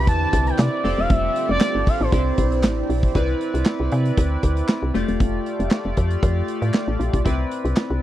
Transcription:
0.00 2.10 D3 medium
0.00 0.80 C4 medium
0.00 0.83 C4 medium
0.00 0.81 E4 medium
0.00 0.83 E4 medium
0.00 0.81 G4 medium
0.00 0.81 B4 medium
0.00 0.83 B4 medium
0.00 0.81 D5 medium
0.07 0.27 E2 loud
0.07 0.49 A5 loud
0.07 kick loud
0.07 closed hi-hat loud
0.33 0.53 C2 loud
0.33 kick loud
0.33 closed hi-hat medium
0.47 0.59 G5 medium
0.47 closed hi-hat medium
0.58 0.69 C3 loud
0.58 1.01 D5 loud
0.58 snare loud
0.58 clap medium
0.58 closed hi-hat loud
0.84 0.95 F1 loud
0.84 2.11 G3 medium
0.84 2.11 A3 medium
0.84 2.10 C4 medium
0.84 2.10 F4 medium
0.84 2.11 F4 medium
0.84 2.10 G4 medium
0.84 2.10 A4 medium
0.84 2.10 D5 medium
0.84 open hi-hat medium
0.98 1.07 E1 medium
0.98 1.13 F5 loud
1.10 1.30 F1 loud
1.10 1.50 E5 loud
1.10 kick loud
1.10 closed hi-hat medium
1.36 closed hi-hat medium
1.49 1.58 F1 loud
1.49 1.90 D5 loud
1.60 snare loud
1.60 clap medium
1.60 closed hi-hat loud
1.75 1.84 G1 medium
1.87 2.03 F5 loud
1.87 kick loud
1.87 open hi-hat medium
2.01 2.10 A1 loud
2.01 2.64 C5 medium
2.12 2.32 C2 loud
2.12 3.14 C3 medium
2.12 3.14 E3 medium
2.12 3.13 C4 medium
2.12 3.14 C4 medium
2.12 2.19 D4 soft
2.12 3.14 D4 medium
2.12 3.13 G4 medium
2.12 3.13 C5 medium
2.12 3.14 D5 medium
2.12 kick loud
2.12 closed hi-hat medium
2.19 3.14 E4 medium
2.38 2.65 B1 loud
2.38 kick loud
2.38 closed hi-hat medium
2.52 closed hi-hat medium
2.63 2.83 A1 loud
2.63 snare loud
2.63 clap medium
2.63 closed hi-hat loud
2.90 3.09 B1 medium
2.90 open hi-hat medium
3.03 kick loud
3.14 3.35 C2 loud
3.14 4.91 C4 medium
3.14 4.91 E4 medium
3.14 4.91 B4 medium
3.14 4.92 D5 medium
3.14 kick loud
3.14 closed hi-hat loud
3.28 closed hi-hat soft
3.41 closed hi-hat medium
3.54 3.63 C2 medium
3.54 closed hi-hat medium
3.65 snare loud
3.65 clap medium
3.80 3.89 C2 medium
3.92 4.12 C3 loud
3.92 closed hi-hat medium
4.05 closed hi-hat soft
4.17 4.37 D2 loud
4.17 kick loud
4.17 closed hi-hat medium
4.43 4.63 D2 medium
4.43 kick medium
4.43 closed hi-hat medium
4.57 closed hi-hat medium
4.68 snare loud
4.68 clap medium
4.83 4.92 C2 medium
4.94 5.05 F1 loud
4.94 7.21 A3 medium
4.94 7.21 F4 medium
4.94 7.22 G4 medium
4.94 7.22 D5 medium
4.94 closed hi-hat medium
5.08 5.17 E1 medium
5.08 closed hi-hat medium
5.20 5.40 F1 loud
5.20 kick loud
5.20 closed hi-hat medium
5.46 closed hi-hat medium
5.60 5.69 F1 loud
5.60 closed hi-hat medium
5.71 snare loud
5.71 clap medium
5.85 5.94 F1 medium
5.97 6.17 F2 loud
5.97 kick medium
5.97 closed hi-hat medium
6.11 closed hi-hat soft
6.23 6.42 F2 loud
6.23 kick loud
6.23 closed hi-hat medium
6.48 closed hi-hat medium
6.62 6.71 A2 medium
6.62 closed hi-hat medium
6.74 snare medium
6.74 clap medium
6.88 6.97 A1 medium
6.99 7.10 A#1 medium
6.99 closed hi-hat medium
7.13 7.23 B1 medium
7.13 kick medium
7.13 closed hi-hat soft
7.25 7.45 C2 loud
7.25 8.02 C4 medium
7.25 8.02 E4 medium
7.25 8.02 B4 medium
7.25 8.02 D5 medium
7.25 kick loud
7.25 closed hi-hat medium
7.51 closed hi-hat medium
7.65 7.74 C2 loud
7.65 closed hi-hat medium
7.76 snare loud
7.76 clap medium
7.90 8.00 C2 medium

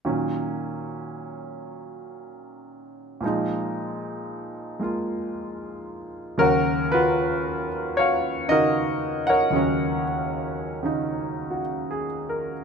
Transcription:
0.05 3.19 A#2 soft
0.05 3.22 D#3 soft
0.05 3.22 F#3 soft
0.05 3.23 C#4 medium
3.21 6.38 A#2 soft
3.21 6.38 F3 soft
3.21 4.78 G#3 soft
3.26 6.40 D#4 medium
4.79 6.38 G#3 soft
4.79 6.38 A#3 soft
4.79 6.40 F4 soft
6.38 9.49 D#2 medium
6.38 8.47 C#3 medium
6.38 9.53 F#3 soft
6.38 9.54 C#4 medium
6.38 6.92 F#4 medium
6.38 6.94 A#4 loud
6.92 8.46 F4 medium
6.92 7.98 F#4 medium
6.92 7.67 B4 medium
7.97 8.50 F#4 medium
7.97 8.46 C#5 medium
7.97 9.51 F5 medium
8.49 9.51 C#3 soft
8.49 9.54 D#3 soft
8.49 9.55 D#4 soft
8.49 10.04 F#4 medium
8.49 9.28 A#4 medium
8.49 9.24 D#5 medium
9.27 11.61 A#4 medium
9.27 11.61 C#5 medium
9.27 11.60 F#5 medium
9.51 12.62 D#2 soft
9.51 10.81 C#3 soft
9.51 12.64 F#3 soft
9.56 12.64 C#4 medium
10.83 12.64 C#3 soft
10.83 12.64 D#3 soft
10.83 12.64 D#4 soft
11.51 12.06 F#4 soft
11.91 12.52 G#4 soft
12.29 12.64 A#4 medium

